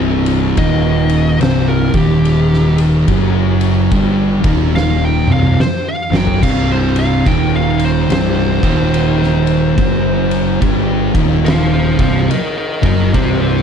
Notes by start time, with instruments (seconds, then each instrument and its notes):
Already playing: picked electric bass C1, distorted electric guitar C2 C3
0.26 ride
0.57 picked electric bass D#1, distorted electric guitar D#2 D#3, lead electric guitar D#5, kick, ride
1.09 ride
1.40 picked electric bass C1, distorted electric guitar C2 C3, lead electric guitar C5, snare, ride
1.68 lead electric guitar A#4
1.93 picked electric bass D#1, distorted electric guitar D#2 D#3, lead electric guitar G4, kick, ride
2.25 ride
2.53 snare
2.78 ride
3.08 picked electric bass F#1, distorted electric guitar F#2 F#3, kick, ride
3.61 ride
3.92 picked electric bass G1, distorted electric guitar G2 G3, kick, ride
4.43 picked electric bass D#1, distorted electric guitar D#2 D#3, kick, ride
4.76 lead electric guitar F5, snare
5.05 lead electric guitar G5
5.27 picked electric bass C1, distorted electric guitar C2 C3, mid tom
5.32 lead electric guitar F5
5.43 mid tom
5.60 lead electric guitar C5, snare
5.88 lead electric guitar F5
6.11 picked electric bass F#1, distorted electric guitar F#2 F#3, snare
6.16 lead electric guitar G5
6.27 floor tom
6.42 picked electric bass C1, distorted electric guitar C2 C3, lead electric guitar F5, kick, crash, splash
6.72 lead electric guitar C5
6.96 lead electric guitar F5, ride
7.26 picked electric bass D#1, distorted electric guitar D#2 D#3, lead electric guitar G5, kick, ride
7.56 lead electric guitar F5
7.79 ride
7.85 lead electric guitar C5
8.08 picked electric bass C1, distorted electric guitar C2 C3, snare, ride
8.13 lead electric guitar C5
8.62 picked electric bass D#1, distorted electric guitar D#2 D#3, kick, ride
8.94 ride
9.23 snare
9.47 ride
9.76 picked electric bass F#1, distorted electric guitar F#2 F#3, kick, ride
10.31 ride
10.61 picked electric bass G1, distorted electric guitar G2 G3, kick, ride
11.14 picked electric bass D#1, distorted electric guitar D#2 D#3, kick, ride
11.45 lead electric guitar C5 F5, snare, ride
11.74 lead electric guitar C5 F5
11.97 picked electric bass C1, distorted electric guitar C2 C3, kick, ride
12.02 lead electric guitar C5 F5
12.30 lead electric guitar A#4 D#5, ride
12.57 lead electric guitar A#4 D#5
12.82 picked electric bass F#1, distorted electric guitar F#2 F#3, lead electric guitar A#4, kick, ride
12.86 lead electric guitar D#5
13.13 picked electric bass C1, distorted electric guitar C2 C3, lead electric guitar G4 C5, kick, ride
13.41 lead electric guitar G4 C5